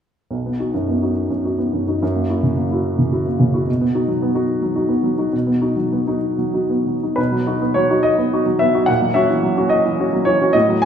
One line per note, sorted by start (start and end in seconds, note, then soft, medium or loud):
0.31 1.98 B1 soft
0.46 0.69 B3 soft
0.59 0.72 D#4 soft
0.59 0.73 F#4 soft
0.74 0.97 F#2 soft
0.89 1.11 B3 soft
1.02 1.28 D#4 soft
1.02 1.28 F#4 soft
1.30 1.53 F#2 soft
1.45 1.58 D#4 soft
1.45 1.58 F#4 soft
1.58 1.82 B3 soft
1.73 1.96 F#2 soft
1.88 2.01 D#4 soft
1.88 2.01 F#4 soft
2.02 3.64 F#2 soft
2.15 2.38 A#3 soft
2.30 2.42 E4 soft
2.30 2.43 F#4 soft
2.43 2.65 C#3 soft
2.57 2.79 A#3 soft
2.71 2.96 E4 soft
2.71 2.97 F#4 soft
2.99 3.21 C#3 soft
3.12 3.25 E4 soft
3.12 3.25 F#4 soft
3.26 3.48 A#3 soft
3.39 3.62 C#3 soft
3.54 3.66 E4 soft
3.54 3.66 F#4 soft
3.67 5.29 B2 soft
3.81 4.03 B3 soft
3.95 4.07 D#4 soft
3.95 4.07 F#4 soft
4.08 4.30 F#3 soft
4.22 4.43 B3 soft
4.35 4.59 D#4 soft
4.35 4.59 F#4 soft
4.62 4.84 F#3 soft
4.75 4.88 D#4 soft
4.75 4.88 F#4 soft
4.89 5.12 B3 soft
5.04 5.27 F#3 soft
5.18 5.31 D#4 soft
5.18 5.32 F#4 soft
5.33 7.14 B2 soft
5.47 5.71 B3 soft
5.61 5.76 D#4 soft
5.61 5.76 F#4 soft
5.77 6.02 F#3 soft
5.92 6.17 B3 soft
6.07 6.36 D#4 soft
6.07 6.36 F#4 soft
6.38 6.64 F#3 soft
6.54 6.68 D#4 soft
6.54 6.69 F#4 soft
6.70 6.96 B3 soft
6.87 7.12 F#3 soft
7.03 7.17 D#4 soft
7.03 7.17 F#4 soft
7.16 8.84 B2 soft
7.16 7.75 B4 soft
7.32 7.56 F#3 soft
7.47 7.60 D#4 soft
7.47 7.60 F#4 soft
7.62 7.85 B3 soft
7.74 7.99 F#3 soft
7.74 8.04 C#5 soft
7.90 8.16 D#4 soft
7.90 8.16 F#4 soft
8.03 8.59 D#5 medium
8.18 8.41 B3 soft
8.33 8.45 D#4 soft
8.33 8.46 F#4 soft
8.46 8.69 F#3 soft
8.59 8.83 B3 soft
8.59 8.87 E5 medium
8.74 8.87 D#4 soft
8.74 8.87 F#4 soft
8.86 10.50 A#2 soft
8.86 9.14 F#5 medium
9.02 9.24 F#3 soft
9.14 9.28 C#4 soft
9.14 9.28 F#4 soft
9.14 9.70 E5 medium
9.30 9.52 E3 soft
9.43 9.65 F#3 soft
9.57 9.82 C#4 soft
9.57 9.82 F#4 soft
9.69 10.25 D#5 medium
9.85 10.07 E3 soft
10.00 10.12 C#4 soft
10.00 10.12 F#4 soft
10.13 10.35 F#3 soft
10.25 10.49 E3 soft
10.25 10.54 C#5 medium
10.41 10.53 C#4 soft
10.41 10.54 F#4 soft
10.53 10.85 A2 soft
10.53 10.82 D#5 medium
10.69 10.85 F#3 soft
10.82 10.85 G#5 medium